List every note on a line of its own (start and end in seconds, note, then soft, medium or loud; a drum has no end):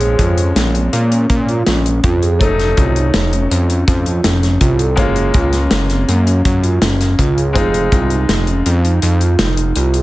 0.00 0.16 A#1 medium
0.00 2.35 F3 medium
0.00 2.36 G#3 medium
0.00 2.37 C4 medium
0.00 2.37 C#4 medium
0.00 0.15 G#4 medium
0.00 closed hi-hat medium
0.19 0.53 F2 medium
0.19 0.36 F4 medium
0.19 kick medium
0.19 closed hi-hat medium
0.37 0.70 C#4 medium
0.37 closed hi-hat medium
0.56 0.90 A#1 medium
0.56 snare medium
0.56 closed hi-hat medium
0.75 0.91 C4 medium
0.75 closed hi-hat medium
0.93 1.27 A#2 medium
0.93 1.10 A#3 medium
0.93 closed hi-hat medium
1.12 1.45 C#4 medium
1.12 closed hi-hat medium
1.30 1.63 A#2 medium
1.30 kick loud
1.30 closed hi-hat medium
1.49 1.65 F4 medium
1.49 closed hi-hat soft
1.67 2.01 A#1 medium
1.67 2.00 C#4 medium
1.67 snare medium
1.67 closed hi-hat medium
1.86 closed hi-hat medium
2.04 2.43 F2 medium
2.04 2.20 F4 medium
2.04 kick loud
2.04 closed hi-hat medium
2.22 2.38 G#4 medium
2.22 closed hi-hat medium
2.39 2.74 F1 medium
2.39 4.94 F#3 medium
2.39 4.94 A3 medium
2.39 4.95 C#4 medium
2.39 4.95 D#4 medium
2.39 2.73 A4 medium
2.39 kick medium
2.39 closed hi-hat medium
2.59 snare soft
2.59 closed hi-hat soft
2.77 3.11 C2 medium
2.77 2.94 F4 medium
2.77 kick medium
2.77 closed hi-hat medium
2.96 3.29 D#4 medium
2.96 closed hi-hat medium
3.14 3.48 F1 medium
3.14 snare loud
3.14 closed hi-hat medium
3.32 3.49 C#4 medium
3.32 closed hi-hat medium
3.50 3.85 F2 medium
3.50 3.67 C4 medium
3.50 closed hi-hat medium
3.69 4.02 C#4 medium
3.69 closed hi-hat medium
3.88 4.21 F2 medium
3.88 kick loud
3.88 snare soft
3.88 closed hi-hat medium
4.05 4.22 F4 medium
4.05 closed hi-hat medium
4.23 4.58 F1 medium
4.23 4.57 C#4 medium
4.23 snare loud
4.23 closed hi-hat medium
4.43 snare soft
4.43 closed hi-hat medium
4.60 4.99 C2 medium
4.60 4.77 F4 medium
4.60 kick medium
4.60 closed hi-hat medium
4.79 4.96 A4 medium
4.79 closed hi-hat medium
4.96 5.32 F#1 loud
4.96 7.51 G#3 medium
4.96 7.51 A#3 medium
4.96 7.52 C#4 medium
4.96 7.52 F4 medium
4.96 5.31 G#4 medium
4.96 kick loud
4.96 closed hi-hat medium
5.16 closed hi-hat medium
5.34 5.68 C#2 medium
5.34 5.51 F4 medium
5.34 kick loud
5.34 closed hi-hat medium
5.53 5.86 C#4 medium
5.53 snare soft
5.53 closed hi-hat medium
5.71 6.05 F#1 medium
5.71 snare loud
5.71 closed hi-hat medium
5.90 6.06 C4 medium
5.90 snare soft
5.90 closed hi-hat medium
6.08 6.42 F#2 medium
6.08 6.25 A#3 medium
6.08 closed hi-hat medium
6.27 6.60 C#4 medium
6.27 closed hi-hat medium
6.45 6.79 F#2 medium
6.45 kick loud
6.45 closed hi-hat medium
6.63 6.80 F4 medium
6.63 closed hi-hat medium
6.81 7.15 F#1 medium
6.81 7.15 C#4 medium
6.81 snare loud
6.81 closed hi-hat medium
7.01 snare soft
7.01 closed hi-hat medium
7.19 7.57 C#2 medium
7.19 7.35 F4 medium
7.19 kick medium
7.19 closed hi-hat medium
7.37 7.54 G#4 medium
7.37 closed hi-hat soft
7.53 7.90 F1 loud
7.53 10.03 G#3 medium
7.53 10.03 C4 medium
7.53 10.03 D#4 medium
7.53 10.03 F4 medium
7.53 7.89 G#4 medium
7.53 kick loud
7.53 closed hi-hat medium
7.74 closed hi-hat medium
7.92 8.26 C2 medium
7.92 8.09 F4 medium
7.92 kick medium
7.92 closed hi-hat medium
8.10 8.43 D#4 medium
8.10 closed hi-hat medium
8.29 8.63 F1 medium
8.29 snare medium
8.29 closed hi-hat medium
8.47 8.64 C#4 medium
8.47 closed hi-hat soft
8.65 9.00 F2 loud
8.65 8.82 C4 medium
8.65 closed hi-hat medium
8.84 9.17 D#4 medium
8.84 closed hi-hat medium
9.02 9.36 F2 loud
9.02 closed hi-hat medium
9.21 9.37 F4 medium
9.21 closed hi-hat medium
9.39 9.73 F1 medium
9.39 9.72 D#4 medium
9.39 snare loud
9.39 closed hi-hat medium
9.57 closed hi-hat medium
9.76 10.03 C2 medium
9.76 9.93 F4 medium
9.76 closed hi-hat medium
9.94 10.03 G#4 medium
9.94 closed hi-hat medium